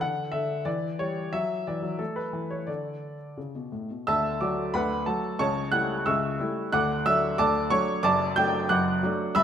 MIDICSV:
0, 0, Header, 1, 2, 480
1, 0, Start_track
1, 0, Key_signature, 2, "major"
1, 0, Tempo, 656455
1, 7, Time_signature, 2, 2, 24, 8
1, 968, Tempo, 680272
1, 3368, Tempo, 660066
1, 6792, End_track
2, 0, Start_track
2, 0, Title_t, "Grand piano"
2, 0, Program_c, 0, 0
2, 0, Control_c, 0, 64, 127
2, 7, Note_on_c, 0, 78, 106
2, 15, Control_c, 0, 64, 0
2, 16, Note_on_c, 0, 50, 70
2, 152, Control_c, 0, 64, 127
2, 185, Note_off_c, 0, 50, 0
2, 231, Note_on_c, 0, 76, 95
2, 241, Note_on_c, 0, 50, 70
2, 247, Note_off_c, 0, 78, 0
2, 415, Note_off_c, 0, 50, 0
2, 476, Note_on_c, 0, 74, 96
2, 478, Note_off_c, 0, 76, 0
2, 478, Note_on_c, 0, 52, 69
2, 497, Control_c, 0, 64, 0
2, 620, Control_c, 0, 64, 127
2, 654, Note_off_c, 0, 52, 0
2, 721, Note_off_c, 0, 74, 0
2, 726, Note_on_c, 0, 73, 93
2, 730, Note_on_c, 0, 55, 62
2, 903, Note_off_c, 0, 55, 0
2, 968, Note_off_c, 0, 73, 0
2, 969, Note_on_c, 0, 76, 103
2, 973, Note_on_c, 0, 54, 67
2, 979, Control_c, 0, 64, 0
2, 1095, Control_c, 0, 64, 127
2, 1141, Note_off_c, 0, 54, 0
2, 1205, Note_off_c, 0, 76, 0
2, 1213, Note_on_c, 0, 74, 74
2, 1218, Note_on_c, 0, 52, 62
2, 1323, Note_on_c, 0, 54, 60
2, 1325, Note_off_c, 0, 52, 0
2, 1436, Note_on_c, 0, 69, 82
2, 1437, Note_off_c, 0, 54, 0
2, 1444, Note_on_c, 0, 57, 59
2, 1448, Note_off_c, 0, 74, 0
2, 1452, Control_c, 0, 64, 0
2, 1557, Note_on_c, 0, 71, 73
2, 1560, Note_off_c, 0, 69, 0
2, 1565, Control_c, 0, 64, 127
2, 1618, Note_off_c, 0, 57, 0
2, 1678, Note_on_c, 0, 52, 58
2, 1802, Note_on_c, 0, 73, 72
2, 1804, Note_off_c, 0, 71, 0
2, 1856, Note_off_c, 0, 52, 0
2, 1916, Note_on_c, 0, 74, 72
2, 1921, Note_on_c, 0, 50, 58
2, 1927, Note_off_c, 0, 73, 0
2, 1938, Control_c, 0, 64, 0
2, 2092, Control_c, 0, 64, 127
2, 2274, Note_off_c, 0, 50, 0
2, 2408, Note_off_c, 0, 74, 0
2, 2416, Note_on_c, 0, 49, 51
2, 2420, Control_c, 0, 64, 0
2, 2530, Note_off_c, 0, 49, 0
2, 2540, Note_on_c, 0, 47, 49
2, 2653, Note_off_c, 0, 47, 0
2, 2659, Note_on_c, 0, 45, 51
2, 2772, Note_off_c, 0, 45, 0
2, 2790, Note_on_c, 0, 47, 46
2, 2896, Note_off_c, 0, 47, 0
2, 2906, Note_on_c, 0, 88, 116
2, 2909, Note_on_c, 0, 50, 76
2, 2910, Note_on_c, 0, 38, 70
2, 2915, Note_on_c, 0, 81, 90
2, 2916, Note_on_c, 0, 76, 97
2, 3019, Control_c, 0, 64, 127
2, 3126, Note_off_c, 0, 76, 0
2, 3126, Note_off_c, 0, 81, 0
2, 3132, Note_off_c, 0, 38, 0
2, 3132, Note_off_c, 0, 50, 0
2, 3137, Note_off_c, 0, 88, 0
2, 3143, Note_on_c, 0, 86, 91
2, 3147, Note_on_c, 0, 54, 60
2, 3151, Note_on_c, 0, 57, 61
2, 3152, Note_on_c, 0, 66, 65
2, 3152, Note_on_c, 0, 74, 73
2, 3353, Note_off_c, 0, 54, 0
2, 3355, Note_off_c, 0, 57, 0
2, 3355, Note_off_c, 0, 66, 0
2, 3362, Note_off_c, 0, 74, 0
2, 3374, Note_off_c, 0, 86, 0
2, 3377, Note_on_c, 0, 83, 110
2, 3379, Control_c, 0, 64, 0
2, 3381, Note_on_c, 0, 38, 74
2, 3385, Note_on_c, 0, 78, 95
2, 3386, Note_on_c, 0, 50, 69
2, 3388, Note_on_c, 0, 71, 90
2, 3602, Note_off_c, 0, 78, 0
2, 3604, Note_off_c, 0, 71, 0
2, 3609, Note_off_c, 0, 38, 0
2, 3612, Note_off_c, 0, 50, 0
2, 3613, Note_on_c, 0, 81, 88
2, 3614, Note_off_c, 0, 83, 0
2, 3616, Note_on_c, 0, 57, 62
2, 3617, Note_on_c, 0, 54, 63
2, 3618, Note_on_c, 0, 69, 74
2, 3619, Note_on_c, 0, 66, 72
2, 3830, Note_off_c, 0, 57, 0
2, 3831, Note_off_c, 0, 54, 0
2, 3832, Note_off_c, 0, 66, 0
2, 3838, Note_off_c, 0, 69, 0
2, 3849, Note_off_c, 0, 81, 0
2, 3851, Note_on_c, 0, 37, 72
2, 3854, Note_on_c, 0, 85, 117
2, 3856, Note_on_c, 0, 49, 84
2, 3860, Note_on_c, 0, 81, 92
2, 3865, Note_on_c, 0, 73, 91
2, 4009, Control_c, 0, 64, 127
2, 4081, Note_off_c, 0, 81, 0
2, 4083, Note_off_c, 0, 73, 0
2, 4086, Note_off_c, 0, 37, 0
2, 4088, Note_off_c, 0, 49, 0
2, 4088, Note_on_c, 0, 90, 121
2, 4093, Note_on_c, 0, 55, 64
2, 4093, Note_on_c, 0, 78, 91
2, 4094, Note_off_c, 0, 85, 0
2, 4094, Note_on_c, 0, 57, 64
2, 4096, Note_on_c, 0, 64, 69
2, 4311, Note_off_c, 0, 55, 0
2, 4311, Note_off_c, 0, 57, 0
2, 4313, Note_off_c, 0, 64, 0
2, 4318, Note_off_c, 0, 78, 0
2, 4332, Note_off_c, 0, 90, 0
2, 4337, Note_on_c, 0, 88, 108
2, 4340, Note_on_c, 0, 37, 77
2, 4342, Note_on_c, 0, 85, 82
2, 4344, Control_c, 0, 64, 0
2, 4344, Note_on_c, 0, 49, 76
2, 4345, Note_on_c, 0, 76, 83
2, 4571, Note_off_c, 0, 37, 0
2, 4573, Note_off_c, 0, 49, 0
2, 4583, Note_on_c, 0, 55, 66
2, 4584, Note_on_c, 0, 57, 69
2, 4591, Note_on_c, 0, 64, 68
2, 4789, Note_off_c, 0, 85, 0
2, 4791, Note_off_c, 0, 76, 0
2, 4795, Note_off_c, 0, 55, 0
2, 4795, Note_off_c, 0, 57, 0
2, 4799, Note_off_c, 0, 64, 0
2, 4816, Note_off_c, 0, 88, 0
2, 4822, Note_on_c, 0, 90, 127
2, 4824, Note_on_c, 0, 50, 87
2, 4826, Note_on_c, 0, 38, 76
2, 4827, Note_on_c, 0, 78, 102
2, 4830, Note_on_c, 0, 86, 105
2, 4940, Control_c, 0, 64, 127
2, 5042, Note_off_c, 0, 78, 0
2, 5044, Note_off_c, 0, 86, 0
2, 5050, Note_off_c, 0, 50, 0
2, 5051, Note_off_c, 0, 38, 0
2, 5056, Note_off_c, 0, 90, 0
2, 5063, Note_on_c, 0, 54, 68
2, 5064, Note_on_c, 0, 88, 127
2, 5066, Note_on_c, 0, 76, 99
2, 5068, Note_on_c, 0, 57, 68
2, 5076, Note_on_c, 0, 62, 75
2, 5272, Note_off_c, 0, 54, 0
2, 5275, Note_off_c, 0, 57, 0
2, 5280, Note_off_c, 0, 62, 0
2, 5281, Note_off_c, 0, 76, 0
2, 5296, Note_off_c, 0, 88, 0
2, 5297, Control_c, 0, 64, 0
2, 5299, Note_on_c, 0, 50, 85
2, 5301, Note_on_c, 0, 86, 127
2, 5304, Note_on_c, 0, 38, 79
2, 5307, Note_on_c, 0, 81, 104
2, 5312, Note_on_c, 0, 74, 102
2, 5521, Note_off_c, 0, 81, 0
2, 5524, Note_off_c, 0, 74, 0
2, 5526, Note_off_c, 0, 50, 0
2, 5529, Note_off_c, 0, 38, 0
2, 5534, Note_off_c, 0, 86, 0
2, 5534, Note_on_c, 0, 54, 71
2, 5534, Note_on_c, 0, 85, 127
2, 5539, Note_on_c, 0, 57, 71
2, 5541, Note_on_c, 0, 62, 79
2, 5541, Note_on_c, 0, 73, 104
2, 5747, Note_off_c, 0, 54, 0
2, 5750, Note_off_c, 0, 57, 0
2, 5751, Note_off_c, 0, 62, 0
2, 5758, Note_off_c, 0, 73, 0
2, 5771, Note_off_c, 0, 85, 0
2, 5771, Note_on_c, 0, 86, 127
2, 5774, Note_on_c, 0, 30, 87
2, 5776, Note_on_c, 0, 42, 91
2, 5779, Note_on_c, 0, 74, 108
2, 5782, Note_on_c, 0, 81, 107
2, 5912, Control_c, 0, 64, 127
2, 5997, Note_off_c, 0, 74, 0
2, 5999, Note_off_c, 0, 81, 0
2, 6004, Note_off_c, 0, 30, 0
2, 6005, Note_off_c, 0, 42, 0
2, 6010, Note_off_c, 0, 86, 0
2, 6012, Note_on_c, 0, 91, 127
2, 6013, Note_on_c, 0, 54, 71
2, 6019, Note_on_c, 0, 57, 73
2, 6023, Note_on_c, 0, 62, 79
2, 6023, Note_on_c, 0, 79, 117
2, 6227, Note_off_c, 0, 54, 0
2, 6230, Note_off_c, 0, 57, 0
2, 6233, Note_off_c, 0, 62, 0
2, 6239, Note_off_c, 0, 79, 0
2, 6250, Note_off_c, 0, 91, 0
2, 6253, Note_on_c, 0, 90, 127
2, 6256, Note_on_c, 0, 30, 83
2, 6258, Control_c, 0, 64, 0
2, 6260, Note_on_c, 0, 42, 83
2, 6260, Note_on_c, 0, 86, 101
2, 6263, Note_on_c, 0, 78, 99
2, 6485, Note_off_c, 0, 30, 0
2, 6487, Note_off_c, 0, 42, 0
2, 6498, Note_on_c, 0, 54, 78
2, 6504, Note_on_c, 0, 57, 76
2, 6510, Note_on_c, 0, 62, 79
2, 6705, Note_off_c, 0, 86, 0
2, 6707, Note_off_c, 0, 78, 0
2, 6710, Note_off_c, 0, 54, 0
2, 6713, Note_off_c, 0, 57, 0
2, 6717, Note_off_c, 0, 62, 0
2, 6730, Note_on_c, 0, 88, 127
2, 6731, Note_off_c, 0, 90, 0
2, 6733, Note_on_c, 0, 31, 87
2, 6733, Note_on_c, 0, 43, 88
2, 6736, Note_on_c, 0, 76, 114
2, 6737, Note_on_c, 0, 83, 107
2, 6792, Note_off_c, 0, 31, 0
2, 6792, Note_off_c, 0, 43, 0
2, 6792, Note_off_c, 0, 76, 0
2, 6792, Note_off_c, 0, 83, 0
2, 6792, Note_off_c, 0, 88, 0
2, 6792, End_track
0, 0, End_of_file